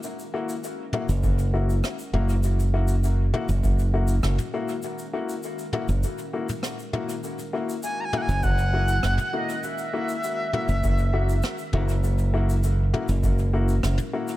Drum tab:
SH |xx-xx--xxx-xxx-x|xx-xx--xxx-xxx-x|xx-xxx-xxx-xxx-x|xx-xx--xxx-xxx-x|
SD |------------r---|------------r---|------------r---|------------r---|
T2 |------o-------o-|------o------o--|------o----o--o-|------o------o--|
BD |--------o-------|--------o-------|----------------|--------o-------|

SH |xx-xx--xxx-xxx-x|xx-xx--xxx-xxx-x|
SD |------------r---|------------r---|
T2 |------o-------o-|------o------o--|
BD |--------o-------|--------o-------|